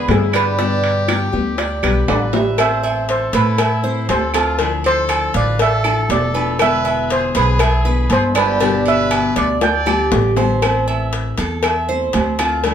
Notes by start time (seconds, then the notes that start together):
Already playing: B4
0.08 G2 D3 B3 E4 G#4, high bongo, low bongo, high timbale, low timbale
0.33 D4 G4 B4, high bongo, high timbale, claves
0.58 B2 D3 G3 B3 D4 G4, high bongo
0.84 high timbale
1.08 D3 G3 B3 G4, high bongo, high timbale, claves
1.32 D2 D3 G3 B3 G4, high bongo
1.58 D5, muted nylon-string guitar stroke, high bongo, high timbale
1.83 B1 D3 G3 B3 G4 B4, high bongo, high timbale, claves
2.08 A1 D3 G3 B3 G4 B4 D5, high bongo, low bongo, high timbale
2.33 E5, high bongo, low timbale
2.58 E3 A3 C4 E4 C5 E5, cowbell, low agogo, claves
2.83 E5, low agogo
3.09 A4 C5, cowbell
3.33 A2 E4 A4 B4, cowbell, low agogo
3.58 E5, muted nylon-string guitar stroke, cowbell, low agogo, claves
3.83 A3 C4 E4 C5
4.09 D2 E3 A3 C4 E4 A4 C5, cowbell, low timbale, low agogo
4.34 A3 C4 E4 F4 A4, cowbell, low agogo, claves
4.59 D3 F3 A3 D4 E4, cowbell, low agogo
4.84 A4 C5, low agogo
5.09 A4, cowbell, low agogo, claves
5.34 A1 B4 D5 F5, cowbell
5.59 A4 E5, muted nylon-string guitar stroke, cowbell, low agogo
5.84 F3 A3 D4 E4 A4, low agogo, claves
6.09 E1 F3 A3 D4 E4 A4 D5, cowbell, low timbale
6.34 F3 A3 D4 E4 B4, low agogo
6.59 B2 D3 G#3 B3 E4 B4 E5, cowbell, low agogo, claves
6.85 E5, low agogo
7.10 G#4 C5, cowbell
7.35 B1 G#4 B4, cowbell, low agogo
7.59 E5, muted nylon-string guitar stroke, cowbell, low agogo, claves
7.85 D3 G#3 B3 E4 B4
8.09 G1 D3 G#3 B3 E4 G#4 C5, cowbell, low agogo
8.34 D3 G#3 B3 D4 E4 G4 B4, cowbell, low agogo, claves
8.60 B2 D3 G3 B3 D4 G4, cowbell, low agogo
8.86 B4 E5, low agogo
9.11 G4, cowbell, low agogo, claves
9.36 D2 B4 D5, cowbell
9.61 D5 G5, muted nylon-string guitar stroke, cowbell, high bongo, low agogo
9.86 D3 G3 B3 G4, high bongo, low agogo, claves
10.12 A1 D3 G3 B3 G4, cowbell, low bongo
10.36 D3 G3 B3 G4 C5, low bongo, low agogo
10.62 E3 A3 C4 E4, cowbell, low agogo, claves
10.88 E5, low agogo
11.13 cowbell
11.38 E2 A4, cowbell, low agogo
11.63 E5, muted nylon-string guitar stroke, cowbell, low agogo, claves
11.89 A3 C4 E4 C5
12.13 D2 E3 A3 C4 E4, cowbell, low timbale, low agogo
12.39 A3 C4 E4 F4, cowbell, low agogo, claves
12.64 D3 F3 A3 D4 E4, cowbell, low agogo